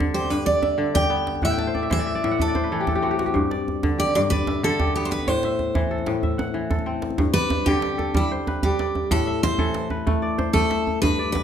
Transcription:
0.00 0.29 G2 medium
0.00 0.77 D3 medium
0.00 0.99 C4 medium
0.00 0.34 A4 medium
0.00 0.45 D5 medium
0.00 djembe slap medium
0.00 djembe bass medium
0.14 0.94 G4 medium
0.14 0.30 C5 medium
0.24 djembe tone soft
0.30 1.48 G2 medium
0.30 0.46 B4 medium
0.30 djembe slap medium
0.46 1.56 D5 medium
0.46 0.95 D5 medium
0.46 djembe bass medium
0.62 1.66 E5 medium
0.62 djembe slap medium
0.62 djembe tone medium
0.78 1.48 D3 medium
0.94 1.48 G4 medium
0.94 1.44 G5 loud
0.94 djembe slap medium
0.94 djembe bass medium
1.04 djembe tone soft
1.10 1.73 B3 medium
1.27 djembe slap medium
1.35 djembe slap soft
1.35 djembe tone soft
1.42 2.23 A2 medium
1.42 1.91 E5 medium
1.42 2.31 F#5 medium
1.42 djembe slap soft
1.42 djembe bass medium
1.51 2.37 G5 medium
1.51 djembe slap soft
1.58 2.45 A5 medium
1.58 djembe slap medium
1.67 1.90 C5 medium
1.74 1.98 D5 medium
1.74 djembe slap soft
1.74 djembe tone medium
1.83 2.06 E5 medium
1.83 djembe slap soft
1.90 2.71 E3 medium
1.90 2.55 C5 medium
1.90 2.41 E5 medium
1.90 djembe slap medium
1.90 djembe bass medium
1.99 2.15 D5 medium
2.07 2.24 E5 medium
2.15 2.47 D5 medium
2.15 djembe tone soft
2.24 3.40 A2 medium
2.24 2.40 E5 medium
2.24 djembe slap medium
2.31 2.86 F#5 medium
2.39 3.16 A4 medium
2.39 3.43 E5 medium
2.39 djembe bass medium
2.48 3.50 D5 medium
2.55 3.74 C5 medium
2.55 djembe slap medium
2.55 djembe tone medium
2.64 3.08 B4 medium
2.72 3.40 E3 medium
2.72 2.88 A4 medium
2.80 2.95 G4 medium
2.87 4.20 A4 medium
2.87 djembe slap medium
2.87 djembe bass medium
2.95 3.10 G4 medium
2.95 djembe tone medium
3.02 4.82 C4 medium
3.02 3.18 F#4 medium
3.11 3.26 G4 medium
3.19 3.40 F#4 medium
3.19 djembe slap medium
3.26 3.98 G4 medium
3.26 djembe slap soft
3.26 djembe tone soft
3.34 4.14 G2 medium
3.34 djembe slap soft
3.34 djembe bass medium
3.51 4.32 D5 medium
3.51 djembe slap medium
3.68 djembe slap soft
3.68 djembe tone medium
3.76 djembe slap soft
3.83 4.62 D3 medium
3.83 djembe slap medium
3.83 djembe bass medium
3.98 4.79 G4 medium
3.98 4.14 D5 medium
4.07 djembe tone soft
4.15 5.32 G2 medium
4.15 4.20 D5 loud
4.15 djembe slap medium
4.30 4.63 B4 medium
4.30 5.43 D5 medium
4.30 djembe bass medium
4.47 5.44 E5 medium
4.47 djembe slap medium
4.47 djembe tone medium
4.63 5.32 D3 medium
4.63 4.93 A4 medium
4.80 6.21 G4 medium
4.80 djembe slap medium
4.80 djembe bass medium
4.87 djembe tone medium
4.96 6.83 B3 medium
4.96 5.07 G4 medium
5.05 5.10 C5 medium
5.11 5.28 B4 medium
5.11 djembe slap medium
5.19 djembe tone medium
5.27 6.06 A2 medium
5.27 6.87 C5 medium
5.27 djembe bass medium
5.43 6.23 E5 medium
5.43 djembe slap medium
5.59 djembe slap soft
5.59 djembe tone medium
5.75 6.53 E3 medium
5.75 djembe slap medium
5.75 djembe bass medium
5.91 6.70 A4 medium
5.98 djembe tone medium
6.06 7.24 A2 medium
6.06 djembe slap medium
6.23 7.27 E5 medium
6.23 djembe slap soft
6.23 djembe bass medium
6.31 djembe slap soft
6.38 7.24 F#5 medium
6.38 djembe slap medium
6.38 djembe tone medium
6.54 7.24 E3 medium
6.70 7.98 A4 medium
6.70 djembe slap medium
6.70 djembe bass medium
6.79 djembe tone medium
6.86 8.54 C4 medium
7.02 djembe slap medium
7.10 djembe tone medium
7.18 9.16 G2 medium
7.18 djembe slap medium
7.18 djembe bass medium
7.34 7.67 B4 loud
7.34 8.44 D5 medium
7.50 djembe slap medium
7.50 djembe tone medium
7.66 9.16 D3 medium
7.66 8.16 G4 medium
7.66 9.08 G4 medium
7.66 djembe bass medium
7.82 djembe slap medium
7.98 9.30 A4 medium
7.98 djembe slap soft
7.98 djembe tone medium
8.14 8.63 G3 medium
8.14 8.31 E4 medium
8.14 djembe slap medium
8.14 djembe bass medium
8.32 9.50 C5 medium
8.47 9.71 B4 medium
8.47 djembe slap medium
8.47 djembe tone medium
8.63 9.16 G3 medium
8.63 9.12 G4 medium
8.63 djembe bass medium
8.79 9.91 D5 medium
8.79 djembe slap medium
8.87 djembe slap soft
8.95 djembe tone medium
9.04 djembe slap soft
9.11 11.07 A2 medium
9.11 9.41 A4 medium
9.11 djembe slap medium
9.11 djembe bass medium
9.27 10.31 E5 medium
9.43 9.88 C5 medium
9.43 djembe slap medium
9.43 djembe tone medium
9.58 11.07 E3 medium
9.58 10.90 A4 medium
9.58 djembe bass medium
9.74 djembe slap medium
9.90 10.44 B4 medium
9.90 djembe slap soft
9.90 djembe tone medium
10.07 10.53 A3 medium
10.07 djembe slap medium
10.07 djembe bass medium
10.22 11.19 D5 medium
10.38 11.43 C5 medium
10.38 djembe slap medium
10.38 djembe tone medium
10.53 11.43 A3 medium
10.53 10.98 A4 medium
10.53 djembe bass medium
10.70 11.43 E5 medium
10.70 djembe slap medium
10.79 djembe slap soft
10.87 djembe tone medium
10.95 djembe slap soft
11.02 11.43 G2 medium
11.02 11.31 B4 loud
11.02 djembe slap medium
11.02 djembe bass medium
11.19 11.43 D5 medium
11.32 11.43 B4 medium
11.32 djembe slap medium
11.32 djembe tone medium

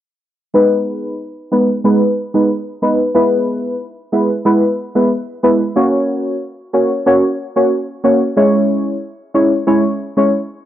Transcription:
0.54 1.14 G#3 medium
0.54 1.14 B3 medium
0.54 1.14 D#4 medium
0.54 1.15 B4 loud
1.52 1.69 G#3 medium
1.52 1.69 B3 medium
1.52 1.69 D#4 medium
1.52 1.69 B4 medium
1.84 2.02 G#3 loud
1.84 2.02 B3 medium
1.84 2.02 D#4 medium
1.84 2.02 B4 loud
2.34 2.50 G#3 medium
2.34 2.50 B3 medium
2.34 2.50 D#4 medium
2.34 2.50 B4 medium
2.82 2.99 G#3 medium
2.82 3.00 B3 medium
2.82 3.00 D#4 medium
2.82 3.00 B4 medium
3.14 3.75 G#3 medium
3.14 3.75 B3 medium
3.14 3.75 E4 medium
3.14 3.75 B4 loud
4.12 4.30 G#3 medium
4.12 4.30 B3 medium
4.12 4.30 E4 medium
4.12 4.30 B4 medium
4.45 4.62 G#3 medium
4.45 4.62 B3 medium
4.45 4.63 E4 medium
4.45 4.63 B4 loud
4.95 5.10 G#3 medium
4.95 5.11 B3 medium
4.95 5.11 E4 medium
4.95 5.11 B4 medium
5.43 5.60 G#3 medium
5.43 5.60 B3 medium
5.43 5.61 E4 medium
5.43 5.61 B4 medium
5.76 6.36 A#3 loud
5.76 6.36 C#4 medium
5.76 6.36 F#4 medium
5.76 6.36 C#5 loud
6.73 6.91 A#3 medium
6.73 6.91 C#4 medium
6.73 6.91 F#4 medium
6.73 6.91 C#5 medium
7.06 7.23 A#3 medium
7.06 7.23 C#4 medium
7.06 7.24 F#4 medium
7.06 7.24 C#5 loud
7.56 7.71 A#3 medium
7.56 7.71 C#4 medium
7.56 7.71 F#4 medium
7.56 7.72 C#5 medium
8.04 8.21 A#3 medium
8.04 8.21 C#4 medium
8.04 8.21 F#4 medium
8.04 8.21 C#5 medium
8.36 8.97 G#3 loud
8.36 8.97 C#4 medium
8.36 8.97 E4 medium
8.36 8.97 C#5 loud
9.34 9.52 G#3 medium
9.34 9.52 C#4 medium
9.34 9.52 E4 medium
9.34 9.52 C#5 medium
9.67 9.84 G#3 medium
9.67 9.84 C#4 medium
9.67 9.84 E4 medium
9.67 9.84 C#5 loud
10.17 10.32 G#3 medium
10.17 10.32 C#4 medium
10.17 10.32 E4 medium
10.17 10.32 C#5 medium

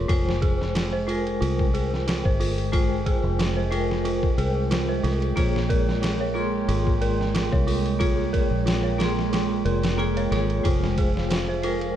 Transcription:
0.00 0.11 A#3 medium
0.00 0.08 F4 loud
0.00 0.09 F4 medium
0.00 0.12 G#4 medium
0.00 0.10 A#4 loud
0.00 0.11 C#5 medium
0.00 0.11 C6 medium
0.08 1.38 F1 medium
0.08 1.04 G#3 medium
0.08 10.66 G#3 medium
0.08 0.40 F4 loud
0.08 1.05 F4 medium
0.08 1.05 C5 medium
0.08 10.66 G5 medium
0.08 1.05 G5 medium
0.08 kick loud
0.08 ride medium
0.29 snare soft
0.42 0.74 G#4 loud
0.42 kick medium
0.42 ride medium
0.61 snare soft
0.75 0.91 F4 medium
0.75 snare loud
0.75 ride medium
0.93 1.07 C5 medium
1.07 2.69 G#3 medium
1.07 1.18 F4 medium
1.07 2.69 F4 medium
1.07 2.70 A#4 medium
1.07 2.70 G5 medium
1.07 ride medium
1.27 ride soft
1.41 2.22 C2 medium
1.41 1.72 F4 loud
1.41 ride medium
1.59 kick medium
1.74 2.05 G#4 medium
1.74 ride medium
1.94 snare soft
2.07 2.23 F4 medium
2.07 snare loud
2.07 ride medium
2.25 3.21 G1 medium
2.25 2.40 C5 medium
2.25 kick loud
2.40 2.50 F4 loud
2.40 open hi-hat medium
2.58 ride soft
2.72 3.68 G#3 medium
2.72 3.68 F4 medium
2.72 3.04 F4 loud
2.72 3.69 C5 medium
2.72 3.69 G5 medium
2.72 kick loud
2.72 ride medium
3.06 3.38 G#4 loud
3.06 kick medium
3.06 ride medium
3.24 4.35 F1 medium
3.39 3.55 F4 medium
3.39 snare loud
3.39 ride medium
3.57 3.71 C5 medium
3.70 5.32 G#3 medium
3.70 5.33 F4 medium
3.70 3.82 F4 medium
3.70 5.34 A#4 medium
3.70 5.33 G5 medium
3.70 ride medium
3.91 snare soft
4.05 4.36 F4 medium
4.05 ride medium
4.23 kick medium
4.38 5.01 C2 medium
4.38 4.69 G#4 medium
4.38 ride medium
4.71 4.87 F4 medium
4.71 snare loud
4.71 ride medium
4.89 5.03 C5 medium
5.03 5.33 C2 medium
5.03 5.14 F4 loud
5.03 snare soft
5.03 ride medium
5.22 ride soft
5.36 6.66 A#1 medium
5.36 6.32 A#3 medium
5.36 5.68 F4 medium
5.36 6.32 F4 medium
5.36 6.32 G#4 medium
5.36 6.33 C#5 medium
5.36 kick loud
5.36 ride medium
5.56 snare medium
5.69 6.01 A#4 loud
5.69 kick medium
5.69 ride medium
5.89 snare soft
6.02 6.18 F4 medium
6.02 snare loud
6.02 ride medium
6.20 6.35 C#5 medium
6.34 7.96 A#3 medium
6.34 7.96 F4 medium
6.34 6.45 F4 medium
6.34 7.97 G#4 medium
6.34 7.97 C6 medium
6.68 7.49 G#1 medium
6.68 7.00 F4 loud
6.68 ride medium
6.87 kick medium
7.01 7.33 A#4 loud
7.01 ride medium
7.21 snare soft
7.34 7.51 F4 medium
7.34 snare loud
7.34 ride medium
7.52 8.48 C2 medium
7.52 7.67 C#5 medium
7.52 kick loud
7.67 7.77 F4 loud
7.67 open hi-hat medium
7.86 ride soft
7.99 8.95 A#3 medium
7.99 8.32 F4 loud
7.99 8.95 F4 medium
7.99 8.96 G#4 medium
7.99 8.96 C#5 medium
7.99 kick loud
7.99 ride medium
8.33 8.65 A#4 loud
8.33 kick medium
8.33 ride medium
8.51 9.62 A#1 medium
8.66 8.82 F4 medium
8.66 snare loud
8.66 ride medium
8.83 8.98 C#5 medium
8.98 9.95 A#3 medium
8.98 9.09 F4 medium
8.98 9.95 F4 medium
8.98 9.95 G#4 medium
8.98 9.96 C6 medium
8.98 snare medium
8.98 ride medium
9.19 snare soft
9.33 9.64 F4 loud
9.33 snare medium
9.33 ride medium
9.65 10.28 F1 medium
9.65 9.97 A#4 medium
9.65 ride medium
9.83 snare loud
9.83 ride medium
9.98 10.15 A#3 medium
9.98 10.15 F4 medium
9.98 10.15 G#4 medium
9.98 10.15 G5 loud
10.17 10.31 C#5 medium
10.17 ride medium
10.31 10.61 G#1 loud
10.31 10.48 A#3 medium
10.31 10.48 F4 medium
10.31 10.42 F4 loud
10.31 10.48 G#4 medium
10.31 10.48 C#5 medium
10.31 snare soft
10.31 ride medium
10.50 ride soft
10.63 11.93 F1 loud
10.63 11.96 F3 medium
10.63 11.59 G#3 medium
10.63 11.59 F4 medium
10.63 10.96 F4 loud
10.63 11.60 C5 medium
10.63 11.96 F5 medium
10.63 11.60 G5 medium
10.63 kick loud
10.63 ride medium
10.84 snare medium
10.98 11.29 G#4 loud
10.98 kick medium
10.98 ride medium
11.17 snare soft
11.31 11.47 F4 medium
11.31 snare loud
11.31 ride medium
11.49 11.63 C5 medium
11.63 11.96 G#3 medium
11.63 11.96 F4 medium
11.63 11.74 F4 loud
11.63 11.96 A#4 medium
11.63 11.96 G5 medium
11.63 ride medium
11.81 ride soft

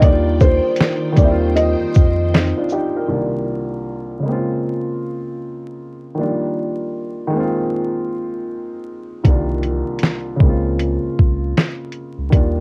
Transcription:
0.00 0.60 D#2 loud
0.00 1.11 D#3 medium
0.00 3.07 D#3 medium
0.00 1.14 G3 medium
0.00 1.17 A#3 medium
0.00 1.16 D5 medium
0.00 0.42 D5 medium
0.00 1.16 G5 medium
0.00 kick loud
0.00 closed hi-hat medium
0.05 1.19 D4 medium
0.05 0.12 D#4 medium
0.12 1.23 F4 medium
0.40 1.20 C5 medium
0.40 kick medium
0.40 shaker soft
0.76 closed hi-hat medium
0.81 snare loud
1.12 3.03 D#3 medium
1.12 3.05 G3 medium
1.17 1.75 D#2 loud
1.17 3.07 A#3 medium
1.17 3.08 C5 medium
1.17 1.26 D5 medium
1.17 3.08 G5 medium
1.17 kick loud
1.17 closed hi-hat soft
1.17 shaker soft
1.22 2.33 C4 medium
1.22 1.29 E4 medium
1.31 2.38 F4 medium
1.56 2.29 D#5 medium
1.56 closed hi-hat medium
1.80 1.86 F2 soft
1.94 2.53 F2 loud
1.94 kick medium
1.94 shaker soft
2.34 2.56 C4 medium
2.34 2.56 D#4 medium
2.34 snare loud
2.34 closed hi-hat medium
2.57 2.71 D4 medium
2.57 2.71 F4 medium
2.69 2.94 D#4 medium
2.69 2.94 G4 medium
2.69 shaker soft
2.96 3.32 G4 medium
2.96 3.32 A#4 medium
3.08 4.24 C2 medium
3.08 4.25 D#3 medium
3.08 4.25 G3 medium
3.08 4.24 A#3 medium
3.13 4.27 D4 soft
3.13 4.27 F4 medium
4.19 6.11 C#3 medium
4.19 6.12 G#3 medium
4.26 6.14 A#3 medium
4.26 6.15 C4 medium
4.32 6.17 F4 medium
6.15 7.26 D#3 medium
6.15 6.25 F3 soft
6.15 7.32 A#3 medium
6.19 7.36 G3 medium
6.19 7.34 D4 medium
6.19 7.35 F4 medium
7.27 9.19 D#3 medium
7.27 9.20 G#3 medium
7.34 9.22 A#3 medium
7.34 9.23 C4 medium
7.40 9.25 F4 medium
9.24 10.40 C2 medium
9.24 9.83 C2 loud
9.24 9.33 D3 soft
9.24 10.41 G3 medium
9.24 10.41 A#3 medium
9.24 kick loud
9.24 closed hi-hat medium
9.29 10.44 D#3 medium
9.29 10.42 D4 medium
9.29 10.43 F4 medium
9.63 closed hi-hat soft
9.99 closed hi-hat medium
10.03 snare medium
10.36 12.27 C#3 medium
10.36 12.29 G#3 medium
10.40 10.98 C#2 medium
10.40 12.30 A#3 medium
10.40 kick medium
10.46 12.32 C4 soft
10.46 12.33 F4 medium
10.79 closed hi-hat medium
11.03 11.09 C#2 soft
11.19 11.54 C#2 medium
11.19 kick medium
11.57 snare loud
11.57 closed hi-hat medium
11.92 closed hi-hat soft
12.18 12.32 C#2 medium
12.30 12.60 D#2 loud
12.30 12.60 D#3 medium
12.30 12.60 G3 medium
12.30 12.60 A#3 medium
12.30 kick loud
12.30 closed hi-hat medium
12.35 12.60 D4 medium
12.35 12.60 F4 medium

